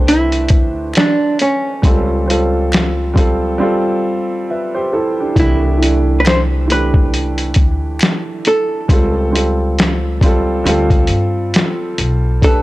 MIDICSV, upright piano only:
0, 0, Header, 1, 2, 480
1, 0, Start_track
1, 0, Key_signature, 0, "major"
1, 0, Tempo, 882353
1, 995, Time_signature, 4, 2, 24, 8
1, 6867, End_track
2, 0, Start_track
2, 0, Title_t, "Upright piano"
2, 0, Program_c, 0, 0
2, 0, Control_c, 0, 64, 127
2, 0, Note_on_c, 0, 57, 80
2, 0, Note_on_c, 0, 62, 66
2, 0, Note_on_c, 0, 67, 66
2, 0, Note_on_c, 0, 71, 79
2, 0, Note_on_c, 0, 72, 80
2, 0, Note_on_c, 0, 74, 77
2, 453, Note_off_c, 0, 57, 0
2, 458, Note_off_c, 0, 62, 0
2, 463, Note_off_c, 0, 67, 0
2, 467, Note_off_c, 0, 72, 0
2, 989, Note_on_c, 0, 55, 80
2, 1000, Note_on_c, 0, 60, 68
2, 1003, Control_c, 0, 64, 0
2, 1004, Note_off_c, 0, 74, 0
2, 1006, Note_off_c, 0, 71, 0
2, 1010, Note_on_c, 0, 65, 68
2, 1019, Note_on_c, 0, 69, 82
2, 1100, Control_c, 0, 64, 127
2, 1167, Note_off_c, 0, 55, 0
2, 1172, Note_off_c, 0, 60, 0
2, 1177, Note_off_c, 0, 65, 0
2, 1182, Note_off_c, 0, 69, 0
2, 1228, Note_on_c, 0, 55, 68
2, 1237, Note_on_c, 0, 72, 64
2, 1248, Note_on_c, 0, 65, 69
2, 1257, Note_on_c, 0, 69, 86
2, 1571, Note_off_c, 0, 55, 0
2, 1575, Note_off_c, 0, 72, 0
2, 1580, Note_off_c, 0, 65, 0
2, 1585, Note_off_c, 0, 69, 0
2, 1706, Note_on_c, 0, 55, 82
2, 1715, Note_on_c, 0, 60, 73
2, 1724, Note_on_c, 0, 65, 76
2, 1733, Note_on_c, 0, 69, 93
2, 1939, Note_off_c, 0, 55, 0
2, 1948, Note_on_c, 0, 55, 97
2, 1949, Note_off_c, 0, 60, 0
2, 1957, Note_on_c, 0, 60, 89
2, 1958, Note_off_c, 0, 65, 0
2, 1963, Control_c, 0, 64, 0
2, 1964, Note_off_c, 0, 69, 0
2, 1966, Note_on_c, 0, 65, 83
2, 1976, Note_on_c, 0, 69, 93
2, 2045, Control_c, 0, 64, 127
2, 2201, Note_off_c, 0, 65, 0
2, 2206, Note_off_c, 0, 69, 0
2, 2450, Note_on_c, 0, 76, 55
2, 2453, Note_on_c, 0, 71, 51
2, 2574, Note_off_c, 0, 76, 0
2, 2576, Note_off_c, 0, 71, 0
2, 2582, Note_on_c, 0, 72, 72
2, 2586, Note_on_c, 0, 67, 67
2, 2674, Note_off_c, 0, 72, 0
2, 2677, Note_off_c, 0, 67, 0
2, 2683, Note_on_c, 0, 69, 77
2, 2687, Note_on_c, 0, 64, 65
2, 2727, Note_off_c, 0, 55, 0
2, 2731, Note_off_c, 0, 60, 0
2, 2811, Note_off_c, 0, 69, 0
2, 2813, Note_off_c, 0, 64, 0
2, 2830, Note_on_c, 0, 67, 58
2, 2833, Note_on_c, 0, 62, 52
2, 2914, Note_on_c, 0, 52, 80
2, 2921, Note_on_c, 0, 57, 68
2, 2923, Control_c, 0, 64, 0
2, 2924, Note_off_c, 0, 62, 0
2, 2932, Note_on_c, 0, 62, 71
2, 2933, Note_off_c, 0, 67, 0
2, 2941, Note_on_c, 0, 67, 81
2, 3007, Control_c, 0, 64, 127
2, 3089, Note_off_c, 0, 52, 0
2, 3093, Note_off_c, 0, 57, 0
2, 3098, Note_off_c, 0, 62, 0
2, 3103, Note_off_c, 0, 67, 0
2, 3146, Note_on_c, 0, 52, 70
2, 3156, Note_on_c, 0, 57, 57
2, 3165, Note_on_c, 0, 62, 64
2, 3174, Note_on_c, 0, 64, 81
2, 3489, Note_off_c, 0, 52, 0
2, 3495, Note_off_c, 0, 57, 0
2, 3499, Note_off_c, 0, 62, 0
2, 3503, Note_off_c, 0, 64, 0
2, 3632, Note_on_c, 0, 52, 69
2, 3641, Note_on_c, 0, 57, 70
2, 3651, Note_on_c, 0, 62, 64
2, 3661, Note_on_c, 0, 67, 82
2, 4296, Note_off_c, 0, 52, 0
2, 4300, Note_off_c, 0, 57, 0
2, 4305, Note_off_c, 0, 62, 0
2, 4310, Note_off_c, 0, 67, 0
2, 4832, Note_on_c, 0, 55, 66
2, 4840, Note_on_c, 0, 60, 68
2, 4841, Control_c, 0, 64, 0
2, 4850, Note_on_c, 0, 65, 63
2, 4861, Note_on_c, 0, 69, 96
2, 4953, Control_c, 0, 64, 127
2, 5008, Note_off_c, 0, 55, 0
2, 5012, Note_off_c, 0, 60, 0
2, 5017, Note_off_c, 0, 65, 0
2, 5023, Note_off_c, 0, 69, 0
2, 5064, Note_on_c, 0, 55, 62
2, 5074, Note_on_c, 0, 60, 60
2, 5083, Note_on_c, 0, 65, 62
2, 5093, Note_on_c, 0, 69, 71
2, 5409, Note_off_c, 0, 55, 0
2, 5413, Note_off_c, 0, 60, 0
2, 5418, Note_off_c, 0, 65, 0
2, 5423, Note_off_c, 0, 69, 0
2, 5555, Note_on_c, 0, 55, 89
2, 5565, Note_on_c, 0, 60, 75
2, 5573, Note_on_c, 0, 65, 79
2, 5584, Note_on_c, 0, 69, 96
2, 5781, Note_off_c, 0, 55, 0
2, 5789, Note_on_c, 0, 55, 87
2, 5790, Note_off_c, 0, 60, 0
2, 5798, Note_on_c, 0, 60, 83
2, 5800, Note_off_c, 0, 65, 0
2, 5801, Control_c, 0, 64, 0
2, 5808, Note_on_c, 0, 65, 89
2, 5809, Note_off_c, 0, 69, 0
2, 5817, Note_on_c, 0, 69, 92
2, 5913, Control_c, 0, 64, 127
2, 6567, Note_off_c, 0, 55, 0
2, 6572, Note_off_c, 0, 60, 0
2, 6577, Note_off_c, 0, 65, 0
2, 6581, Note_off_c, 0, 69, 0
2, 6752, Note_on_c, 0, 57, 67
2, 6761, Control_c, 0, 64, 0
2, 6763, Note_on_c, 0, 62, 66
2, 6771, Note_on_c, 0, 67, 70
2, 6781, Note_on_c, 0, 71, 77
2, 6867, Note_off_c, 0, 57, 0
2, 6867, Note_off_c, 0, 62, 0
2, 6867, Note_off_c, 0, 67, 0
2, 6867, Note_off_c, 0, 71, 0
2, 6867, End_track
0, 0, End_of_file